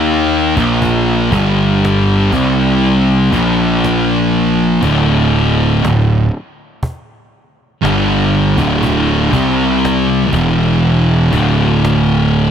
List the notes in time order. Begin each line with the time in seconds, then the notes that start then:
Already playing: D#2 D#3 A#3 D#4
0.56 A#1 A#2 F3 A#3, cajon bass, cajon slap
0.82 cajon bass
1.31 G1 G2 D3 G3, cajon bass
1.85 cajon slap
2.32 C2 C3 G3 C4, cajon bass
3.31 A#1 A#2 F3 A#3, cajon bass
3.84 cajon slap
4.82 D1 D2 A2 D3, cajon bass
5.83 D1 D2 A2, cajon slap
6.83 cajon bass
7.82 G1 G2 D3 G3, cajon slap
8.58 D1 D2 A2 D3, cajon bass
8.83 cajon bass
9.32 C2 C3 G3 C4, cajon bass
9.85 cajon slap
10.32 E1 E2 B2 E3, cajon bass
11.32 D1 D2 A2 D3, cajon bass
11.85 cajon slap